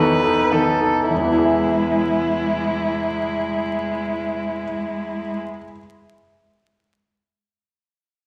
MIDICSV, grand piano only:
0, 0, Header, 1, 2, 480
1, 0, Start_track
1, 0, Key_signature, 4, "major"
1, 0, Tempo, 583090
1, 909, Time_signature, 3, 2, 24, 8
1, 6804, End_track
2, 0, Start_track
2, 0, Title_t, "Grand piano"
2, 0, Program_c, 0, 0
2, 0, Control_c, 0, 64, 127
2, 0, Note_on_c, 0, 40, 49
2, 0, Note_on_c, 0, 59, 35
2, 0, Note_on_c, 0, 63, 36
2, 0, Note_on_c, 0, 69, 38
2, 170, Note_off_c, 0, 59, 0
2, 172, Note_off_c, 0, 63, 0
2, 174, Note_off_c, 0, 69, 0
2, 195, Note_on_c, 0, 63, 33
2, 198, Note_on_c, 0, 69, 35
2, 404, Note_off_c, 0, 63, 0
2, 406, Note_off_c, 0, 69, 0
2, 424, Note_on_c, 0, 59, 31
2, 429, Note_on_c, 0, 63, 32
2, 431, Note_on_c, 0, 69, 35
2, 641, Note_off_c, 0, 59, 0
2, 644, Note_off_c, 0, 63, 0
2, 645, Note_off_c, 0, 69, 0
2, 664, Note_on_c, 0, 63, 26
2, 668, Note_on_c, 0, 69, 29
2, 884, Note_off_c, 0, 63, 0
2, 886, Note_off_c, 0, 69, 0
2, 909, Note_off_c, 0, 40, 0
2, 909, Note_on_c, 0, 40, 32
2, 927, Control_c, 0, 64, 0
2, 968, Note_on_c, 0, 52, 30
2, 1025, Note_on_c, 0, 59, 29
2, 1072, Control_c, 0, 64, 127
2, 1084, Note_on_c, 0, 64, 33
2, 1141, Note_on_c, 0, 68, 32
2, 1197, Note_on_c, 0, 76, 31
2, 3818, Control_c, 0, 64, 0
2, 4461, Note_off_c, 0, 40, 0
2, 4520, Note_off_c, 0, 52, 0
2, 4577, Note_off_c, 0, 59, 0
2, 4636, Note_off_c, 0, 64, 0
2, 4693, Note_off_c, 0, 68, 0
2, 4749, Note_off_c, 0, 76, 0
2, 6804, End_track
0, 0, End_of_file